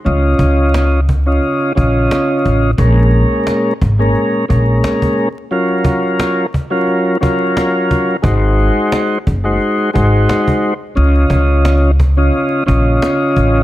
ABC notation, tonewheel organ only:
X:1
M:4/4
L:1/16
Q:"Swing 16ths" 1/4=88
K:Bbm
V:1 name="Tonewheel organ"
[D,DFe]6 z [D,DFe]3 [D,DFe]6 | [B,,A,DB]6 z [B,,A,DB]3 [B,,A,DB]4- [B,,A,DB] z | [G,DFB]6 z [G,DFB]3 [G,DFB]6 | [A,EGc]6 z [A,EGc]3 [A,EGc]4- [A,EGc] z |
[D,DFe]6 z [D,DFe]3 [D,DFe]6 |]